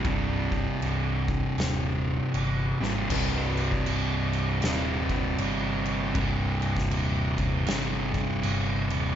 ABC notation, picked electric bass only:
X:1
M:4/4
L:1/8
Q:"Swing" 1/4=79
K:Cm
V:1 name="Picked electric bass" clef=bass
C,,,2 C,,,2 E,,,2 G,,, A,,, | C,,,2 C,,,2 E,,,2 G,,,2 | C,,,2 E,,,2 G,,,2 G,,, E,,, |]